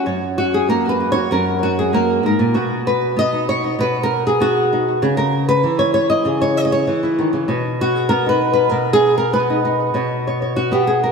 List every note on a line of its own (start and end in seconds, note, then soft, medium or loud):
0.06 1.30 F#2 medium
0.06 0.37 C#5 soft
0.38 0.84 F#4 medium
0.54 0.69 G#4 medium
0.69 1.29 A#3 medium
0.69 0.89 A#4 loud
0.86 1.00 F#4 soft
0.86 1.10 B4 medium
1.00 1.16 F#4 soft
1.12 1.62 C#5 loud
1.16 1.63 F#4 soft
1.31 2.23 F#2 medium
1.31 1.78 A#4 loud
1.63 2.09 F#4 medium
1.79 1.93 G#4 medium
1.93 2.53 A#3 medium
1.93 2.24 A#4 medium
2.23 2.39 G#2 medium
2.23 2.56 A#4 medium
2.39 2.54 A#2 medium
2.54 3.78 B2 medium
2.54 3.16 F#4 medium
2.87 3.48 B4 loud
3.17 3.76 B3 medium
3.17 3.48 D#5 loud
3.33 3.63 D#4 soft
3.49 4.10 C#5 loud
3.64 3.77 D#4 soft
3.79 5.02 B2 medium
3.79 4.03 B4 loud
4.03 4.26 A#4 loud
4.27 4.72 G#4 medium
4.40 5.00 B3 medium
4.40 5.03 F#4 loud
4.73 5.01 D#4 soft
5.02 5.64 C#3 medium
5.02 5.17 G#4 medium
5.17 5.48 A#4 loud
5.49 6.10 B4 medium
5.64 6.86 E3 medium
5.79 5.93 C#5 medium
5.94 6.09 C#5 medium
6.10 6.41 D#5 loud
6.25 6.87 C#3 medium
6.25 7.47 G#4 medium
6.42 6.57 C#5 medium
6.57 6.64 D#5 loud
6.65 6.72 D#5 medium
6.72 7.47 C#5 medium
6.87 7.49 E3 medium
7.03 7.47 E4 soft
7.19 7.32 D#3 medium
7.33 7.48 C#3 medium
7.48 8.71 B2 medium
7.48 7.81 C#5 soft
7.81 8.27 F#4 medium
7.96 8.09 G#4 medium
8.09 8.72 B3 medium
8.09 8.29 A#4 loud
8.26 9.49 D#4 soft
8.26 8.52 B4 loud
8.54 8.69 B4 loud
8.69 9.93 B2 medium
8.69 8.93 A#4 loud
8.93 9.17 G#4 loud
9.18 9.33 A#4 medium
9.33 9.93 B3 medium
9.33 9.95 B4 medium
9.50 9.64 D#4 soft
9.65 9.94 D#4 soft
9.94 11.12 B2 medium
9.94 10.27 C#5 soft
10.27 10.42 C#5 soft
10.42 10.56 C#5 soft
10.56 10.72 F#4 medium
10.72 11.12 B3 medium
10.72 10.87 G4 medium
10.87 11.03 G#4 medium
11.04 11.12 A#4 medium